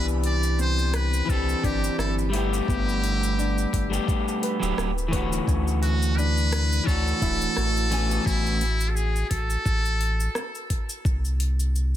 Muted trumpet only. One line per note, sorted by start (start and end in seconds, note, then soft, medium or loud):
0.26 0.58 D5 loud
0.61 0.97 C5 loud
0.95 1.31 B4 medium
1.30 1.66 A4 loud
1.65 1.99 G4 loud
2.00 2.15 A4 medium
2.34 4.39 G4 loud
5.82 6.19 F#4 loud
6.17 6.88 B4 loud
6.86 8.28 A4 loud
8.26 8.91 E4 loud
8.89 8.97 A4 medium
8.95 9.29 G#4 loud
9.30 10.66 A4 loud